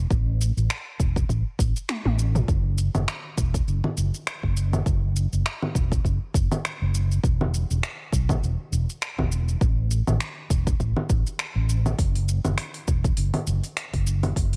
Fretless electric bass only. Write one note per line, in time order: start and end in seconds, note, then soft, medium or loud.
0.11 0.49 A1 medium
0.57 0.66 A1 medium
0.99 1.22 E1 medium
1.29 1.41 A1 medium
1.59 1.71 A1 medium
2.05 2.42 A1 medium
2.48 2.87 F#1 medium
2.95 3.04 F#1 medium
3.38 3.60 E1 medium
3.67 3.79 F#1 medium
3.97 4.09 F#1 medium
4.43 4.80 F#1 medium
4.86 5.25 F#1 medium
5.32 5.42 F#1 medium
5.75 5.97 E1 medium
6.05 6.17 F#1 medium
6.34 6.46 F#1 medium
6.81 7.18 F#1 medium
7.23 7.62 E1 medium
7.70 7.79 E1 medium
8.12 8.35 B1 medium
8.42 8.54 E1 medium
8.72 8.84 E1 medium
9.18 9.55 E1 medium
9.61 10.00 A1 medium
10.08 10.17 A1 medium
10.50 10.72 E1 medium
10.80 10.92 A1 medium
11.09 11.21 A1 medium
11.55 11.92 A1 medium
11.98 12.37 F#1 medium
12.45 12.54 F#1 medium
12.87 13.10 E1 medium
13.17 13.29 F#1 medium
13.47 13.59 F#1 medium
13.93 14.30 F#1 medium
14.36 14.56 F#1 medium